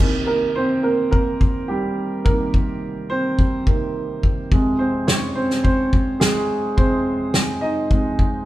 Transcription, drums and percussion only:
0.00 kick, crash
1.13 kick
1.41 kick
2.26 kick
2.54 kick
3.39 kick
3.67 kick
4.23 kick
4.52 kick
5.08 snare
5.51 snare
5.65 kick
5.93 kick
6.21 snare
6.78 kick
7.34 snare
7.91 kick
8.19 kick

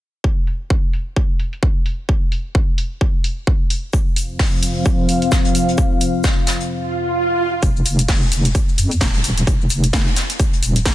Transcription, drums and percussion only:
0.24 kick
0.47 open hi-hat
0.70 kick
0.93 open hi-hat
1.16 kick
1.40 open hi-hat
1.53 open hi-hat
1.63 kick
1.86 open hi-hat
2.09 kick
2.32 open hi-hat
2.55 kick
2.78 open hi-hat
3.01 kick
3.24 open hi-hat
3.47 kick
3.70 open hi-hat
3.93 kick, shaker
4.16 open hi-hat, shaker
4.39 kick, snare, open hi-hat
4.63 open hi-hat, shaker
4.86 kick, shaker
5.09 open hi-hat, shaker
5.22 open hi-hat
5.32 kick, snare, shaker
5.45 closed hi-hat
5.55 open hi-hat, shaker
5.68 closed hi-hat
5.78 kick, shaker
6.01 open hi-hat, shaker
6.24 kick, snare, shaker
6.47 snare, open hi-hat, shaker
6.60 closed hi-hat
7.63 kick, closed hi-hat, shaker
7.77 shaker
7.86 open hi-hat, shaker
7.99 closed hi-hat, shaker
8.08 kick, snare, closed hi-hat, open hi-hat, shaker
8.23 shaker
8.32 open hi-hat, shaker
8.45 closed hi-hat, shaker
8.55 kick, closed hi-hat, shaker
8.69 shaker
8.78 open hi-hat, shaker
8.91 open hi-hat, shaker
9.01 kick, snare, closed hi-hat, shaker
9.14 closed hi-hat, shaker
9.24 open hi-hat, shaker
9.38 closed hi-hat, shaker
9.47 kick, closed hi-hat, shaker
9.61 shaker
9.70 open hi-hat, shaker
9.84 closed hi-hat, shaker
9.93 kick, snare, closed hi-hat, shaker
10.07 shaker
10.16 snare, open hi-hat, shaker
10.30 closed hi-hat, shaker
10.40 kick, closed hi-hat, shaker
10.53 closed hi-hat, shaker
10.63 open hi-hat, shaker
10.76 closed hi-hat, shaker
10.86 kick, snare, closed hi-hat, shaker

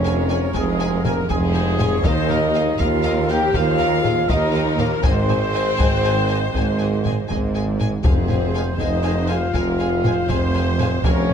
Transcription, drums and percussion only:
0.55 taiko
1.05 taiko low-mid
1.30 taiko
1.80 taiko low-mid
2.05 taiko
2.30 taiko low-mid
2.80 taiko
3.54 taiko
4.04 taiko low-mid
4.29 taiko
4.79 taiko low-mid
5.04 taiko
5.29 taiko low-mid
5.80 taiko
6.55 taiko
7.05 taiko low-mid
7.30 taiko
7.81 taiko low-mid
8.04 taiko
8.30 taiko low-mid
8.79 taiko
9.54 taiko
10.04 taiko low-mid
10.29 taiko
10.80 taiko low-mid
11.05 taiko
11.30 taiko low-mid

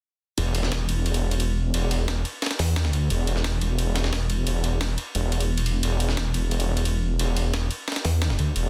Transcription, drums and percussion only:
0.38 ride
0.55 ride
0.63 snare
0.72 snare, ride
0.89 ride
1.06 ride
1.14 ride
1.31 ride
1.40 ride
1.74 ride
1.91 ride
2.08 snare, ride
2.25 ride
2.42 snare, ride
2.46 snare, ride
2.51 snare, ride
2.59 snare, open hi-hat
2.76 snare, ride
2.85 snare
2.93 ride
3.10 ride
3.27 ride
3.36 snare
3.44 snare, ride
3.61 ride
3.79 ride
3.96 snare, ride
4.04 snare
4.13 snare, ride
4.30 ride
4.47 ride
4.64 ride
4.81 snare, ride
4.98 ride
5.15 ride
5.32 ride
5.40 ride
5.58 ride
5.66 ride
5.83 ride
6.00 ride
6.09 snare
6.17 snare, ride
6.34 ride
6.51 ride
6.60 ride
6.77 ride
6.85 ride
7.19 ride
7.37 ride
7.54 snare, ride
7.71 ride
7.88 snare, ride
7.92 snare, ride
7.96 snare, ride
8.05 snare, open hi-hat
8.22 snare, ride
8.30 snare
8.39 ride
8.56 ride

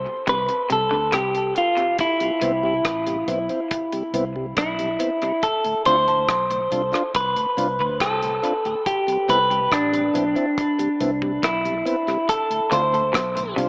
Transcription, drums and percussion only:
0.27 kick, closed hi-hat
0.49 closed hi-hat
0.70 closed hi-hat
1.13 kick, cross-stick, closed hi-hat
1.35 closed hi-hat
1.56 closed hi-hat
1.77 closed hi-hat
1.99 kick, closed hi-hat
2.20 closed hi-hat
2.41 closed hi-hat
2.85 kick, cross-stick, closed hi-hat
3.07 closed hi-hat
3.28 closed hi-hat
3.49 closed hi-hat
3.71 kick, closed hi-hat
3.92 closed hi-hat
4.14 closed hi-hat
4.57 kick, cross-stick, closed hi-hat
4.79 closed hi-hat
5.00 closed hi-hat
5.22 closed hi-hat
5.43 kick, closed hi-hat
5.64 closed hi-hat
5.85 closed hi-hat
6.08 closed hi-hat
6.28 kick, cross-stick, closed hi-hat
6.51 closed hi-hat
6.72 closed hi-hat
6.93 cross-stick, closed hi-hat
7.15 kick, closed hi-hat
7.36 closed hi-hat
7.58 closed hi-hat
8.00 kick, cross-stick, closed hi-hat
8.22 closed hi-hat
8.44 closed hi-hat
8.65 closed hi-hat
8.86 kick, closed hi-hat
9.08 closed hi-hat
9.29 closed hi-hat
9.51 closed hi-hat
9.72 kick, cross-stick, closed hi-hat
9.94 closed hi-hat
10.15 closed hi-hat
10.36 closed hi-hat
10.58 kick, closed hi-hat
10.79 closed hi-hat
11.01 closed hi-hat
11.22 kick
11.43 kick, cross-stick, closed hi-hat
11.65 closed hi-hat
11.86 closed hi-hat
12.08 closed hi-hat
12.29 kick, closed hi-hat
12.51 closed hi-hat
12.72 closed hi-hat
12.94 closed hi-hat
13.14 kick, cross-stick, closed hi-hat
13.37 closed hi-hat
13.58 closed hi-hat

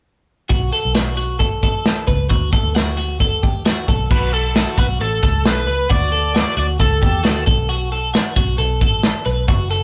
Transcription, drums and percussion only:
0.50 kick, closed hi-hat
0.73 closed hi-hat
0.95 snare, closed hi-hat
1.18 closed hi-hat
1.40 kick, closed hi-hat
1.62 kick, closed hi-hat
1.86 snare, closed hi-hat
2.08 kick, closed hi-hat
2.30 kick, closed hi-hat
2.53 kick, closed hi-hat
2.76 snare, closed hi-hat
2.98 closed hi-hat
3.20 kick, closed hi-hat
3.43 kick, closed hi-hat
3.66 snare, closed hi-hat
3.88 kick, closed hi-hat
4.11 kick, crash
4.33 closed hi-hat
4.55 snare, closed hi-hat
4.78 kick, closed hi-hat
5.00 closed hi-hat
5.23 kick, closed hi-hat
5.46 snare, closed hi-hat
5.69 closed hi-hat
5.90 kick, closed hi-hat
6.13 closed hi-hat
6.36 snare, closed hi-hat
6.58 closed hi-hat
6.80 kick, closed hi-hat
7.02 kick, closed hi-hat
7.25 snare, closed hi-hat
7.47 kick, closed hi-hat
7.70 closed hi-hat
7.92 closed hi-hat
8.15 snare, closed hi-hat
8.36 kick, closed hi-hat
8.58 closed hi-hat
8.80 kick, closed hi-hat
9.03 snare, closed hi-hat
9.26 closed hi-hat
9.48 kick, closed hi-hat
9.71 closed hi-hat

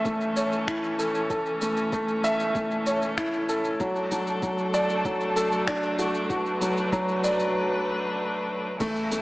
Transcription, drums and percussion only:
0.05 kick, shaker
0.21 shaker
0.36 shaker
0.52 shaker
0.68 finger snap, kick, shaker
0.84 shaker
0.99 shaker
1.15 shaker
1.30 kick, shaker
1.46 shaker
1.61 shaker
1.77 shaker
1.92 kick, shaker
2.08 shaker
2.24 shaker
2.40 shaker
2.55 kick, shaker
2.71 shaker
2.86 shaker
3.02 shaker
3.17 finger snap, kick, shaker
3.33 shaker
3.49 shaker
3.64 shaker
3.80 kick, shaker
3.96 shaker
4.11 shaker
4.27 shaker
4.42 kick, shaker
4.58 shaker
4.74 shaker
4.89 shaker
5.05 kick, shaker
5.21 shaker
5.36 shaker
5.52 shaker
5.67 finger snap, kick, shaker
5.83 shaker
5.99 shaker
6.14 shaker
6.30 kick, shaker
6.46 shaker
6.61 shaker
6.77 shaker
6.92 kick, shaker
7.08 shaker
7.24 shaker
7.39 shaker
8.80 kick, crash, shaker
8.96 shaker
9.12 shaker

